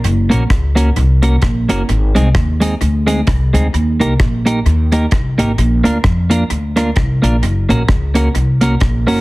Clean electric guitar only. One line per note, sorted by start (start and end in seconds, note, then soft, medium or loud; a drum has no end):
0.30 0.42 A#3 medium
0.30 0.43 C#4 medium
0.30 0.43 F#4 medium
0.30 0.43 A#4 medium
0.75 0.88 A#3 medium
0.75 0.89 C#4 medium
0.75 0.89 F#4 medium
0.75 0.89 A#4 medium
1.22 1.35 A#3 medium
1.22 1.35 C#4 medium
1.22 1.35 F#4 medium
1.22 1.36 A#4 medium
1.42 muted clean electric guitar stroke soft
1.69 1.81 A#3 medium
1.69 1.81 C#4 medium
1.69 1.82 F#4 medium
1.69 1.82 A#4 medium
2.15 2.27 G#3 medium
2.15 2.28 C4 medium
2.15 2.28 D#4 medium
2.15 2.28 G#4 medium
2.60 2.73 G#3 medium
2.60 2.74 C4 medium
2.60 2.74 D#4 medium
2.60 2.74 G#4 medium
3.07 3.19 G#3 medium
3.07 3.20 C4 medium
3.07 3.20 D#4 medium
3.07 3.20 G#4 medium
3.27 muted clean electric guitar stroke soft
3.53 3.66 G#3 medium
3.53 3.66 C4 medium
3.53 3.66 D#4 medium
3.53 3.66 G#4 medium
4.00 4.12 A#3 medium
4.00 4.12 D#4 medium
4.00 4.13 G4 medium
4.00 4.13 A#4 medium
4.46 4.58 A#3 medium
4.46 4.58 D#4 medium
4.46 4.59 G4 medium
4.46 4.59 A#4 medium
4.92 5.04 A#3 medium
4.92 5.05 D#4 medium
4.92 5.05 G4 medium
4.92 5.05 A#4 medium
5.38 5.51 A#3 medium
5.38 5.51 D#4 medium
5.38 5.51 G4 medium
5.38 5.51 A#4 medium
5.84 5.96 A#3 medium
5.84 5.97 D4 medium
5.84 5.97 F4 medium
5.84 5.97 A#4 medium
6.30 6.43 A#3 medium
6.30 6.43 D4 medium
6.30 6.43 F4 medium
6.30 6.43 A#4 medium
6.76 6.89 A#3 medium
6.76 6.89 D4 medium
6.76 6.89 F4 medium
6.76 6.89 A#4 medium
7.22 7.35 A#3 medium
7.22 7.35 D4 medium
7.22 7.35 F4 medium
7.22 7.36 A#4 medium
7.69 7.81 A#3 medium
7.69 7.82 C#4 medium
7.69 7.82 F#4 medium
7.69 7.82 A#4 medium
8.14 8.27 A#3 medium
8.14 8.28 C#4 medium
8.14 8.28 F#4 medium
8.14 8.28 A#4 medium
8.61 8.74 A#3 medium
8.61 8.74 C#4 medium
8.61 8.74 F#4 medium
8.61 8.74 A#4 medium
8.81 muted clean electric guitar stroke soft
9.07 9.20 A#3 medium
9.07 9.20 C#4 medium
9.07 9.20 F#4 medium
9.07 9.20 A#4 medium